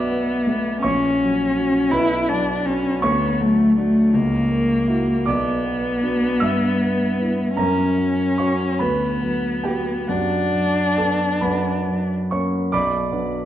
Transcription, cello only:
Already playing: B3
0.84 C#4
1.91 E4
2.29 D4
2.66 C#4
3.03 B3
3.41 A3
3.78 A3
4.15 A#3
5.28 B3
7.57 C#4
8.80 B3
10.09 D4

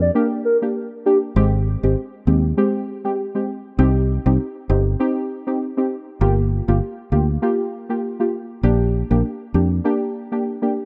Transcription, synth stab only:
0.15 A#3 D4 G4
0.62 A#3 D4 G4
1.06 A#3 D4 G4
1.36 G#3 C4 G4
1.83 G#3 C4 G4
2.27 G#3 C4 G4
2.57 G#3 C4 G4
3.04 G#3 C4 G4
3.35 G#3 C4 G4
3.78 C4 D#4 G4
4.26 C4 D#4 G4
4.69 C4 D#4 G4
5.00 C4 D#4 G4
5.47 C4 D#4 G4
5.77 C4 D#4 G4
6.21 A#3 F4 G4
6.68 A#3 F4 G4
7.12 A#3 F4 G4
7.42 A#3 F4 G4
7.89 A#3 F4 G4
8.20 A#3 F4 G4
8.63 A#3 D4 G4
9.10 A#3 D4 G4
9.54 A#3 D4 G4
9.84 A#3 D4 G4
10.32 A#3 D4 G4
10.62 A#3 D4 G4

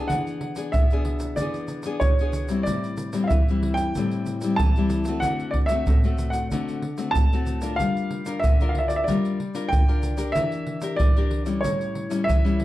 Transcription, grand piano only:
Already playing: A5
0.08 F#5
0.72 E5
1.36 D5
2.00 C#5
2.63 D5
3.24 E5 F5
3.74 G5
4.56 A5
5.20 F#5
5.51 D5
5.66 E5
6.30 F#5
7.11 A5
7.76 F5
8.40 E5
8.69 F5
8.79 E5
8.88 D5
8.96 E5
9.04 D5
9.69 G5
10.32 E5
10.96 D5
11.61 C#5
12.24 E5

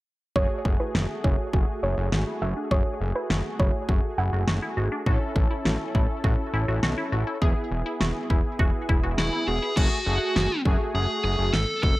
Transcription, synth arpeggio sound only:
0.36 G#4
0.80 E4
0.95 F#4
1.24 E4
1.53 F#4
1.83 E4
1.98 F#4
2.12 F#4
2.27 E4
2.42 F#4
2.56 D4
2.71 G#4
3.15 E4
3.30 F#4
3.59 E4
3.89 F#4
4.18 E4
4.33 F#4
4.48 F#4
4.62 E4
4.77 F#4
4.92 D4
5.06 F#4
5.51 E4
5.65 F#4
5.95 E4
6.24 F#4
6.54 E4
6.68 F#4
6.83 F#4
6.98 E4
7.12 F#4
7.27 E4
7.42 G#4
7.86 E4
8.01 F#4
8.30 E4
8.59 F#4
8.89 E4
9.04 F#4
9.18 F#4
9.33 E4
9.48 F#4
9.62 E4

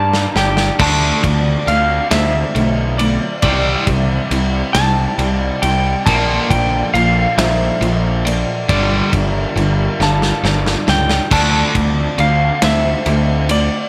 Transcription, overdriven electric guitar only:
0.79 D3 A3 D4
1.23 D3 A3
1.67 D3 A3
2.11 D3 A3
2.55 D3 A3
2.99 D3 A3
3.42 C3 G3 C4
3.87 C3 G3
4.32 C3 G3
4.75 C3 G3
5.19 C3 G3
5.62 C3 G3
6.07 A#2 F3 A#3
6.50 A#2 F3
6.94 A#2 F3
7.38 A#2 F3
7.81 A#2 F3
8.25 A#2 F3
8.69 G2 D3 G3
9.12 G2 D3
9.56 G2 D3
10.00 G2 D3
10.44 G2 D3
10.87 G2 D3
11.31 D3 A3 D4
11.75 D3 A3
12.18 D3 A3
12.62 D3 A3
13.06 D3 A3
13.49 D3 A3

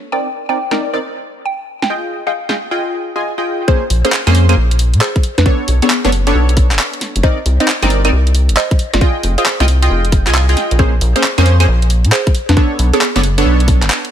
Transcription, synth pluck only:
0.12 G5
0.49 G5
1.45 G5
1.82 G5
2.27 F5
3.68 G#4 C5
4.05 G#4 C5
5.01 G#4 C5
5.38 D4 B4
5.82 B3 G#4
7.23 C5 D#5
7.60 C5 D#5
8.57 C5 D#5
8.94 F4 D5
9.38 G#4 C5
10.79 G#4 C5
11.16 G#4 C5
12.12 G#4 C5
12.49 D4 B4
12.93 B3 G#4

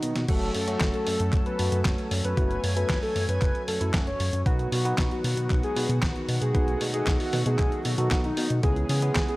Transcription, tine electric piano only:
0.29 F#3 A3 C#4 F#4
0.68 F#3 A3 C#4 F#4
1.59 F#3 A3 C#4 F#4
2.37 F#3 A3 C#4 F#4
2.76 F#3 A3 C#4 A4
3.81 F#3 A3 C#4 E4
3.94 F#3 A3 C#4 F#4
4.46 B3 D#4 F#4 B4
4.85 B3 D#4 F#4 B4
5.76 B3 D#4 F#4 B4
6.55 B3 D#4 F#4 B4
6.94 B3 D#4 F#4 D#5
7.98 B3 D#4 F#4 A4
8.11 B3 D#4 F#4 B4
8.63 B3 C#4 E4 G#4
9.02 B3 C#4 E4 G#4

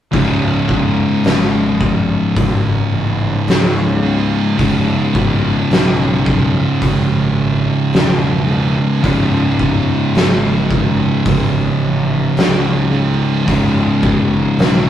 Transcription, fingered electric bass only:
0.13 C#1
1.25 G#1
2.36 G#1
2.92 A1
3.47 C#2
4.59 C#1
5.15 G#1
5.71 B1
6.82 G#1
7.92 E1
9.04 C#1
10.15 G#1
11.26 G#1
11.82 A1
12.37 C#2
13.48 C#1
14.03 G#1
14.58 B1

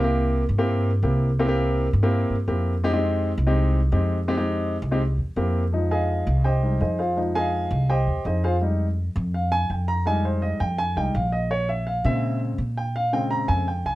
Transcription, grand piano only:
0.03 A#3 C4 E4 G4
0.58 A#3 C4 E4 G4
1.03 A#3 C4 E4 G4
1.39 A#3 C4 E4 G4
1.48 A#3 C4 E4 G4
2.03 A#3 C4 E4 G4
2.48 A#3 C4 E4 G4
2.84 G#3 C4 D#4 G4
2.93 G#3 C4 D#4 G4
3.47 G#3 C4 D#4 G4
3.92 G#3 C4 D#4 G4
4.28 G#3 C4 D#4 G4
4.37 G#3 C4 D#4 G4
4.91 G#3 C4 D#4 G4
5.37 A#3 C4 E4 G4
5.73 F3 G#3 D#4
5.91 G#4 D#5 F5 G#5
6.44 G4 C5 D#5 G5
6.63 G3 G#3 D#4
6.81 D#4 G#4 C5 D#5
6.99 F4 G#4 C5 F5
7.17 F3 G#3 D#4
7.35 G#4 D#5 F5 G#5
7.90 G4 C5 D#5 G5
8.26 D#4 G#4 C5 D#5
8.44 F4 G#4 C5 F5
8.61 G3 G#3 D#4
9.34 F5
9.52 G#5
9.71 G5
9.88 A#5
10.06 G3 G#3 D#4 G#5
10.25 C5
10.42 D#5
10.60 G5
10.78 G#5
10.97 G3 G#3 D#4 G5
11.15 F5
11.32 D#5
11.51 C#5
11.69 E5
11.87 F5
12.05 C#3 G#3 C4 E5
12.78 G5
12.96 F5
13.13 C#3 G#3 C4 G5
13.31 A#5
13.48 G#5
13.68 G5
13.86 G#5

